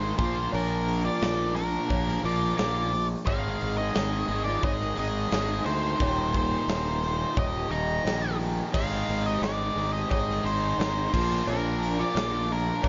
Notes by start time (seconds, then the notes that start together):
Already playing: G#1 G#2 D#3 G#3 D#4 C5
0.16 A#1 A#2 F3 A#3 C5, kick, open hi-hat
0.22 F4
0.52 A#1 D4 A#4, open hi-hat, cowbell
0.88 open hi-hat
1.05 F4 D5
1.21 A#1 A#2 F3 A#3, snare, open hi-hat, cowbell
1.55 D4 A#4, open hi-hat
1.88 A#1 A#2 F3 A#3, kick, open hi-hat, cowbell
2.08 snare
2.23 A#1 A#2 F3 A#3 F4 D5, open hi-hat
2.58 A#1 F4 D5, snare, open hi-hat, cowbell
2.93 open hi-hat
3.25 G#1 G#2 D#3 G#3 G#4 F5, kick, open hi-hat, cowbell
3.61 G#1, open hi-hat
3.78 G#4 D#5
3.95 G#1, snare, open hi-hat, cowbell
4.28 G#1 G#2 D#3 G#3, open hi-hat
4.44 F4 D5
4.62 G#1 G#4 D#5, kick, open hi-hat, cowbell
4.81 snare
4.96 G#1 G#2 D#3 G#3 G#4 D#5, open hi-hat
5.31 G#1 G#2 D#3 G#3, snare, open hi-hat, cowbell
5.66 D2 D#4 C5, open hi-hat
6.00 D#1 D#2 A#2 D#3, kick, open hi-hat, cowbell
6.34 D#4 C5, kick, open hi-hat
6.68 D#1 C5, snare, open hi-hat, cowbell
6.74 D#4
7.02 D#2 A#2 D#3, open hi-hat
7.37 D#1 G4 D#5, kick, open hi-hat, cowbell
7.68 D#1 A#2 D#3 D#5 A#5
7.72 D#2, open hi-hat
8.04 A#1 D#2 A#2 D#3, snare, open hi-hat, cowbell
8.40 open hi-hat
8.72 G#1 G#2 D#3 G#3 D#4 G#4 C5 F5, kick, cowbell, crash
9.09 G#1, open hi-hat
9.26 G4 D#5
9.42 G#1 G#4 D5, snare, open hi-hat, cowbell
9.75 G#1 G#2 D#3 G#3, open hi-hat
9.93 D#5
9.97 G4
10.11 G#1 D#5, kick, open hi-hat, cowbell
10.16 G#4
10.31 snare
10.43 G#1 G#2 D#3 G#3 C5, open hi-hat
10.50 D#4
10.77 G#1 G#2 D#3 G#3, snare, open hi-hat, cowbell
11.12 A#1 A#2 F3 A#3 F4 C5 D5, kick, crash
11.47 A#1 A#4, cowbell
11.52 D4
11.83 open hi-hat
12.00 F4 D5
12.15 A#1 A#2 F3 A#3, snare, open hi-hat, cowbell
12.50 D4 A#4, open hi-hat
12.82 A#1 A#2 F3 A#3, kick, open hi-hat, cowbell